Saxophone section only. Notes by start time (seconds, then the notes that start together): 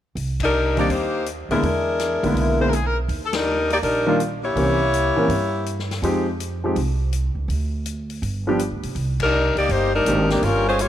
0.42 G3 D4 D#4 A#4
0.78 A#3 D#4 G4 D5
0.90 A#3 D#4 G4 C5
1.50 G#3 D4 E4 A#4
2.60 C5
2.68 A#4
2.74 G#4
2.85 A#4
3.25 A4
3.34 G3 D4 D#4 A#4
3.71 A#3 D#4 G4 D5
3.83 G3 D4 D#4 A#4
4.44 A#3 E4 G4 C#5
9.21 G3 D4 D#4 A#4
9.57 A#3 D#4 G4 D5
9.71 A#3 D#4 G4 C5
9.94 G3 D4 D#4 A#4
10.31 D#3 A#3 D4 G4
10.43 G3 C#4 F4 A#4
10.67 G#3 C#4 F4 C5
10.81 A#3 F4 G4 C#5